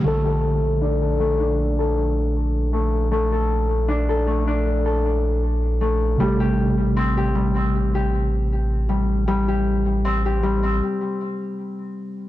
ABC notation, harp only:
X:1
M:4/4
L:1/16
Q:"Swing 16ths" 1/4=78
K:Bblyd
V:1 name="Harp"
A, A z2 D A A, D2 A z4 A, z | A, A z2 D A A, D2 A z4 A, z | G, G z2 C G G, C2 G z4 G, z | G, G z2 C G G, C z8 |]